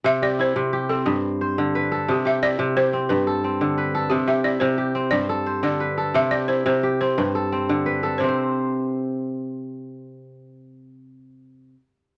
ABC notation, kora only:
X:1
M:12/8
L:1/8
Q:3/8=118
K:C
V:1 name="Kora"
z G E2 G C2 z c2 B A- | A G E2 G C2 A C2 B A- | A G E2 G C2 A c2 B A- | A G E2 G C2 A C2 B A- |
A z8 z3 | z12 |]
V:2 name="Kora" clef=bass
C,2 z C,2 z G,,2 z D,2 z | C,2 z C,2 z G,,2 z D,2 z | C,2 z C,2 z G,,2 z D,2 z | C,2 z C,2 z G,,2 z D,2 z |
[C,Cc]12- | [C,Cc]12 |]